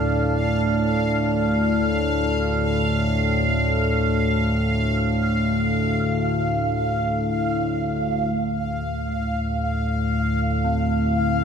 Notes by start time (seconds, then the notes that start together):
Already playing: D2 A2 D4 D5 F5 A5
8.33 D2 A2 F5
10.64 C4